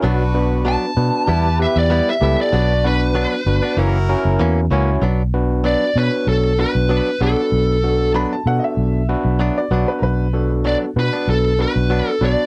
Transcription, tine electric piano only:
X:1
M:4/4
L:1/8
Q:"Swing 16ths" 1/4=96
K:Bm
V:1 name="Tine electric piano"
z [B,DFB]2 [B,DFB] z [B,EGB]2 [B,EGA] | z [B,DFB]2 [B,DFB] z [CEF^A]2 [CEFc] | z [B,DFB]2 [B,DFc]2 [B,DFB]2 [B,DFB]- | [B,DFB] [B,DFA]2 [B,DFA]2 [B,DFB]2 [B,DFB]- |
[B,DFB] [B,DFA]2 [B,DFB]2 [B,DFB]2 [B,DFB] |]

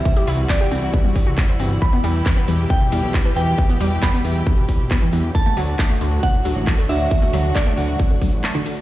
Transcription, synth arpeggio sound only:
X:1
M:4/4
L:1/16
Q:1/4=136
K:Em
V:1 name="Synth arpeggio sound" clef=bass
C G E z G G C z B, G, G F C c C z | E, B, G, z B, B, E, z D, B,, G, z B, E, E, z | E, B, G, z B, B, E, z D, B,, G, z B, E, E, z | D, A, F, z A, A, D, z C, A,, F, z A, D, D, z |
D, A, F, z A, A, D, z C, A,, F, z A, D, D, z |]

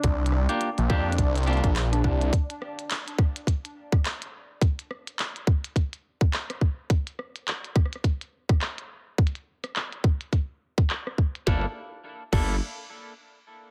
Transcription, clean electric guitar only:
X:1
M:4/4
L:1/16
Q:"Swing 16ths" 1/4=105
K:Gdor
V:1 name="Clean electric guitar"
z3 [B,DFG] z2 [B,DFG] z3 [B,DFG] z4 z | z16 | z16 | z16 |
z16 | [B,DEA] z4 z [B,DEA]2 z8 |]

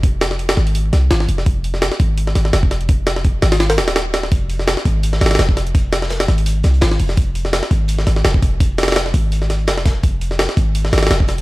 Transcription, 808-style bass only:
X:1
M:4/4
L:1/8
Q:"Swing 16ths" 1/4=168
K:Fm
V:1 name="808-style bass" clef=bass
F,,,3 A,,,2 C,, A,,, F,,, | F,,,2 z A,,,2 A,,, F,,,2- | F,,,3 A,,,2 E,,,3 | F,,,2 z A,,,2 A,,, F,,,2- |
F,,,3 A,,,2 C,, A,,, F,,, | F,,,2 z A,,,2 A,,, F,,,2- | F,,,3 A,,,3 F,,,2 | F,,,2 z A,,,2 A,,, F,,,2 |]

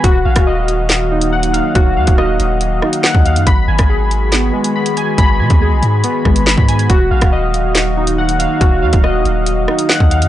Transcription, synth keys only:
X:1
M:4/4
L:1/8
Q:1/4=140
K:Ebm
V:1 name="Synth keys"
G f e3 E g f | G f e3 E g f | c' a A2 C A, c' a | c' a A2 C A, c' a |
G f e3 E g f | G f e3 E g f |]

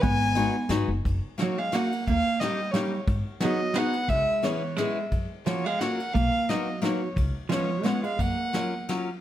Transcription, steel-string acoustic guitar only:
X:1
M:3/4
L:1/8
Q:"Swing" 1/4=176
K:G#m
V:1 name="Steel-string acoustic guitar"
z2 [G,B,DF] z [G,B,DF] z | [K:F#] z2 [A,CDF] z [A,CDF] z | z2 [A,CD=G] z [A,CDG] z | z2 [B,DFG] z [B,DFG] z |
z2 [B,C=EG] z [B,CEG] z | z2 [A,CEF] z [A,CEF] z | z2 [A,B,DF] z [A,B,DF] z | z2 [G,B,CE] z [G,B,CE] z |
z2 [F,A,CE] z [F,A,CE] z |]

